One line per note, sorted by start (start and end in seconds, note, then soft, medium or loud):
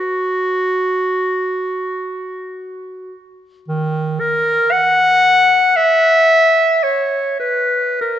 0.00 3.15 F#4 medium
3.68 4.21 D#3 medium
4.20 4.74 A#4 loud
4.72 5.78 F#5 loud
5.76 6.85 E5 loud
6.83 7.39 C#5 medium
7.40 8.00 B4 medium
8.01 8.19 A#4 loud